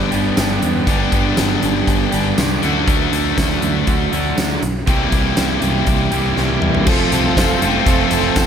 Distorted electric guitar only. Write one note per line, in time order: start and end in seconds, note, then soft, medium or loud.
0.00 0.85 G2 medium
0.00 0.86 D3 medium
0.00 0.87 G3 medium
0.00 0.87 B3 medium
0.00 0.89 D4 medium
0.00 0.88 G4 medium
0.87 2.61 G2 medium
0.87 2.60 D3 medium
0.87 2.61 G3 medium
0.87 2.62 B3 medium
0.87 2.62 D4 medium
0.87 2.63 G4 medium
2.62 4.61 D3 medium
2.62 4.62 A3 medium
2.62 4.62 D4 medium
2.62 4.62 F#4 medium
4.87 6.86 C3 medium
4.87 6.86 E3 medium
4.87 6.86 G3 medium
4.87 6.87 C4 medium
4.87 6.87 E4 medium
6.87 7.86 F3 loud
6.87 7.36 A3 medium
6.87 7.37 C4 medium
6.87 7.39 F4 loud
6.87 7.40 A4 loud
7.37 7.87 A3 medium
7.37 7.64 C4 medium
7.37 7.63 F4 medium
7.37 7.62 A4 medium
7.62 7.87 C4 medium
7.62 7.88 F4 medium
7.62 7.89 A4 medium
7.87 8.37 F3 medium
7.87 8.47 A3 medium
7.87 8.13 C4 medium
7.87 8.12 F4 medium
7.87 8.11 A4 loud
8.12 8.47 C4 medium
8.12 8.47 F4 medium
8.12 8.47 A4 medium